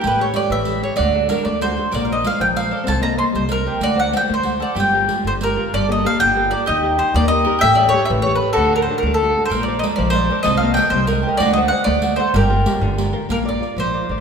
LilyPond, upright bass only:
\new Staff \with { instrumentName = "Upright bass" } { \clef bass \time 6/8 \key g \minor \tempo 4. = 127 a,,4. a,,4. | d,4. d,4. | bes,,4. bes,,4. | c,4. c,4. |
d,4. d,4. | g,,4. g,,4. | g,,4. g,,4. | ees,4. ees,4. |
a,,4. a,,4. | d,4. d,4. | bes,,4. bes,,4. | c,4. c,4. |
d,4. d,4. | g,,4. g,,4. | \key bes \major bes,,4. bes,,4 a,,8 | }